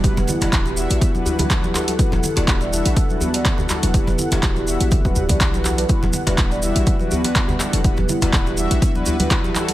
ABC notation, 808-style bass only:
X:1
M:4/4
L:1/16
Q:"Swing 16ths" 1/4=123
K:Em
V:1 name="808-style bass" clef=bass
E,,, E,,, z E,,, D,,,2 E,,, A,,, z8 | z E,,, z E,,, D,,,2 E,,, A,,, z6 z E,,,- | E,,, E,,, z E,,, D,,,2 E,,, A,,,2 D,,, D,,, B,,,4- B,,, | z E,,, z E,,, D,,,2 E,,, A,,, z6 z E,,,- |
E,,, E,,, z E,,, D,,,2 E,,, A,,, z8 |]